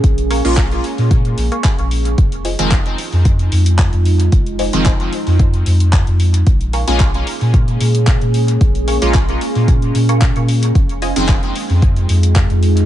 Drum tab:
HH |xxo-xxooxxoxxxox|xxoxxxooxxoxxxox|xxoxxxooxxoxxxox|xxoxxxooxxoxxxox|
CP |----x-------x---|----x-------x---|----x-------x---|----x-------x---|
BD |o---o---o---o---|o---o---o---o---|o---o---o---o---|o---o---o---o---|

HH |xxoxxxooxxoxxxox|xxoxxxooxxoxxxox|
CP |----x-------x---|----x-------x---|
BD |o---o---o---o---|o---o---o---o---|